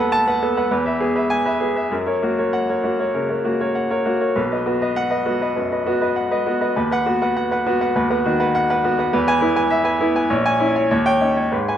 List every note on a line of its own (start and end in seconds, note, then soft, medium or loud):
0.00 0.67 D#2 medium
0.00 0.43 B3 medium
0.00 0.43 A4 medium
0.00 0.27 B4 medium
0.00 0.28 F#5 medium
0.12 0.36 A5 loud
0.27 0.41 B4 medium
0.27 0.41 F#5 medium
0.43 0.66 B3 medium
0.43 0.66 A4 medium
0.57 0.70 B4 medium
0.57 0.70 F#5 medium
0.71 1.88 E2 medium
0.71 0.84 B4 medium
0.85 0.99 B4 soft
0.85 0.99 E5 medium
1.00 1.25 B3 medium
1.00 1.24 G#4 medium
1.15 1.29 B4 medium
1.15 1.29 E5 medium
1.30 1.55 G#5 medium
1.45 1.59 B4 medium
1.45 1.60 E5 medium
1.60 1.85 B3 soft
1.60 1.85 G#4 medium
1.76 1.90 B4 soft
1.76 1.90 E5 medium
1.91 3.11 F#2 medium
1.91 2.05 A#4 soft
2.06 2.21 A#4 medium
2.06 2.21 C#5 medium
2.23 2.47 A#3 medium
2.23 2.47 F#4 medium
2.38 2.52 A#4 soft
2.38 2.52 C#5 medium
2.53 2.78 F#5 medium
2.69 2.83 A#4 soft
2.69 2.83 C#5 medium
2.84 3.09 A#3 soft
2.84 3.09 F#4 medium
2.99 3.13 A#4 soft
2.99 3.14 C#5 medium
3.14 3.39 C#3 soft
3.14 3.28 A#4 medium
3.29 3.44 A#4 soft
3.29 3.44 C#5 soft
3.45 3.70 A#3 medium
3.45 3.70 F#4 medium
3.61 3.74 A#4 soft
3.61 3.74 C#5 medium
3.75 4.00 F#5 medium
3.90 4.05 A#4 medium
3.90 4.05 C#5 medium
4.06 4.30 A#3 soft
4.06 4.30 F#4 medium
4.21 4.35 A#4 soft
4.21 4.35 C#5 soft
4.36 5.52 B1 medium
4.36 4.50 B4 medium
4.52 4.65 B4 soft
4.52 4.66 D#5 medium
4.66 4.91 B3 medium
4.66 4.90 F#4 medium
4.82 4.95 B4 medium
4.82 4.95 D#5 medium
4.96 5.20 F#5 medium
5.11 5.24 B4 soft
5.11 5.24 D#5 medium
5.26 5.50 B3 medium
5.26 5.50 F#4 medium
5.41 5.55 B4 medium
5.41 5.55 D#5 medium
5.56 5.80 F#2 soft
5.56 5.70 B4 medium
5.72 5.85 B4 soft
5.72 5.85 D#5 soft
5.86 6.10 B3 medium
5.86 6.10 F#4 medium
6.01 6.15 B4 medium
6.01 6.15 D#5 medium
6.16 6.40 F#5 medium
6.31 6.45 B4 medium
6.31 6.45 D#5 medium
6.46 6.70 B3 medium
6.46 6.70 F#4 medium
6.61 6.74 B4 medium
6.61 6.75 D#5 medium
6.76 7.92 D#2 medium
6.76 6.90 B4 medium
6.91 7.05 B4 medium
6.91 7.05 F#5 medium
7.06 7.30 B3 medium
7.06 7.30 F#4 medium
7.22 7.35 B4 medium
7.22 7.35 F#5 medium
7.37 7.50 F#5 medium
7.51 7.65 B4 medium
7.51 7.65 F#5 medium
7.66 7.90 B3 medium
7.66 7.90 F#4 medium
7.81 7.94 B4 medium
7.81 7.94 F#5 medium
7.95 9.09 D#2 medium
7.95 8.09 B4 medium
8.10 8.34 B3 medium
8.10 8.24 B4 medium
8.10 8.24 F#5 medium
8.25 8.49 D#3 medium
8.25 8.49 F#4 medium
8.40 8.53 B4 medium
8.40 8.53 F#5 medium
8.55 8.69 F#5 medium
8.70 8.83 B4 medium
8.70 8.83 F#5 medium
8.84 9.07 B3 medium
8.84 9.07 F#4 medium
8.99 9.12 B4 medium
8.99 9.12 F#5 medium
9.13 10.27 E2 medium
9.13 9.26 B4 medium
9.27 9.41 B4 medium
9.27 9.41 G#5 loud
9.41 9.65 B3 medium
9.41 9.65 E4 medium
9.56 9.69 B4 medium
9.56 9.70 G#5 medium
9.70 9.94 E5 medium
9.84 9.98 B4 medium
9.84 9.98 G#5 medium
10.01 10.24 B3 medium
10.01 10.24 E4 medium
10.16 10.29 B4 medium
10.16 10.29 G#5 medium
10.30 10.89 A#1 medium
10.30 10.44 C#5 medium
10.45 10.59 C#5 medium
10.45 10.59 G#5 medium
10.60 10.84 C#4 medium
10.60 10.84 E4 medium
10.75 10.89 C#5 medium
10.75 10.89 G#5 medium
10.91 11.51 D#2 medium
10.91 11.04 C#5 medium
11.06 11.20 C#5 medium
11.06 11.20 G5 medium
11.21 11.46 C#4 medium
11.21 11.46 D#4 medium
11.37 11.51 C#5 medium
11.37 11.51 G5 medium
11.52 11.78 G#2 medium
11.52 11.67 B4 medium
11.68 11.78 B4 soft
11.68 11.78 G#5 medium